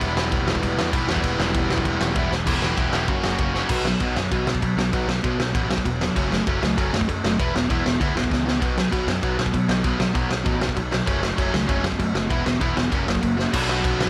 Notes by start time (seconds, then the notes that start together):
Already playing: E3 G3 B3 E4
0.01 E1, kick, crash
0.17 snare
0.32 E1, kick, crash
0.48 E1, snare
0.55 kick
0.63 E1, kick, crash
0.77 E2, snare
0.91 B1 E3 G3 B3, kick, crash
0.95 E4
1.07 E2 E3 G3 B3 E4, snare
1.16 kick
1.23 E1, kick, crash
1.39 E1, snare
1.54 E1, kick, crash
1.70 E1, snare
1.78 kick
1.85 E1, kick, crash
2.01 E1, snare
2.15 E1 E3 G3 B3 E4, kick, crash
2.31 E1, snare
2.46 E1 E3 B3 E4 G4, kick, crash
2.62 E1, snare
2.77 E1 E3 B3 E4 G4, kick, ride
2.92 E1 E3 B3 E4 G4, snare
3.07 F#1 F#3 A#3 C#4 F#4, kick, ride
3.24 F#1, snare
3.38 F#1 F#3 A#3 C#4 F#4, kick, ride
3.54 F#3 A#3 C#4 F#4, snare
3.69 B1 B2 F#3 B3, kick, crash
3.85 B2 F#3, snare
4.00 B1 B2 F#3 B3, kick, crash
4.16 F#2 B2 F#3, snare
4.31 B1 B2 F#3 B3, kick, crash
4.47 B2 F#3, snare
4.55 kick
4.62 B2 F#3, kick, crash
4.77 B1 B2 F#3, snare
4.93 B1 B2 F#3 B3, kick, crash
5.07 B1 B2 F#3, snare
5.23 B1 B2 F#3 B3, kick, crash
5.39 B1 B2 F#3, snare
5.53 A1 B2 F#3 B3, kick, crash
5.69 B1 B2 F#3, snare
5.78 kick
5.84 E1 B2 F#3, kick, crash
6.01 B2 F#3, snare
6.15 F#1 F#3 A3 C#4, kick, crash
6.31 F#3 A3, snare
6.47 F#1 F#3 A3 C#4, kick, crash
6.62 C#2 F#3 A3, snare
6.77 F#1 F#3 A3 C#4, kick, crash
6.93 F#2 F#3 A3, snare
7.01 kick
7.08 F#2 F#3 A3, kick, crash
7.24 F#1 F#3 A3, snare
7.39 E1 E3 B3 E4, kick, crash
7.54 E1 E3 B3, snare
7.69 E1 E3 B3 E4, kick, crash
7.84 E1 E3 B3, snare
8.00 D2 E3 B3 E4, kick, crash
8.15 E1 E3 B3, snare
8.24 kick
8.31 C#2 E3 B3, kick, snare
8.46 E3 B3, snare
8.60 B1 B2 F#3 B3, kick, crash
8.77 B2 F#3, snare
8.91 B1 B2 F#3 B3, kick, crash
9.07 F#2 B2 F#3, snare
9.23 B1 B2 F#3 B3, kick, crash
9.38 B2 F#3, snare
9.46 kick
9.53 B2 F#3, kick, crash
9.68 B1 B2 F#3, snare
9.84 B1 B2 F#3 B3, kick, crash
9.99 B1 B2 F#3, snare
10.14 B1 B2 F#3 B3, kick, crash
10.30 B1 B2 F#3, snare
10.44 A1 B2 F#3 B3, kick, crash
10.60 B1 B2 F#3, snare
10.69 kick
10.76 B1 B2 F#3, kick, crash
10.91 B2 F#3, snare
11.06 F#1 F#3 A3 C#4, kick, crash
11.21 F#3 A3, snare
11.37 F#1 F#3 A3 C#4, kick, crash
11.53 C#2 F#3 A3, snare
11.67 F#1 F#3 A3 C#4, kick, crash
11.84 F#2 F#3 A3, snare
11.92 kick
11.99 F#2 F#3 A3, kick, crash
12.14 F#1 F#3 A3, snare
12.29 E1 E3 B3 E4, kick, crash
12.44 E1 E3 B3, snare
12.60 E1 E3 B3 E4, kick, crash
12.76 E1 E3 B3, snare
12.90 F#1 F#3 A#3 C#4, kick, crash
13.06 F#1 F#3 A#3, snare
13.15 kick
13.22 F#1 F#3 A#3, kick, crash
13.37 F#3 A#3, snare
13.52 B1 B2 F#3 B3 D4, kick, crash
13.69 snare
13.84 B1, kick, crash
13.99 B1, snare